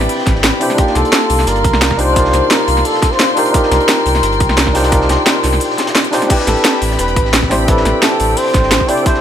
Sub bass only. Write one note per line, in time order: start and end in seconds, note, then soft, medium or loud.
0.27 0.35 A1 medium
0.36 0.45 G1 medium
0.44 0.52 A1 medium
0.96 1.04 C2 loud
1.30 1.46 C2 medium
1.47 1.66 G1 medium
1.64 2.32 C2 medium
2.33 2.41 C2 loud
2.68 2.84 C2 medium
3.71 3.79 C2 loud
4.06 4.21 C2 medium
4.23 4.42 G1 medium
4.40 5.08 C2 medium
5.09 5.17 C2 loud
5.44 5.59 C2 medium
6.47 6.55 A1 loud
6.82 6.97 A1 medium
6.99 7.18 E1 medium
7.16 7.84 A1 medium
7.85 7.93 A1 loud
8.20 8.36 A1 medium
8.54 8.62 A1 medium
8.63 8.73 G1 medium
8.72 8.80 A1 medium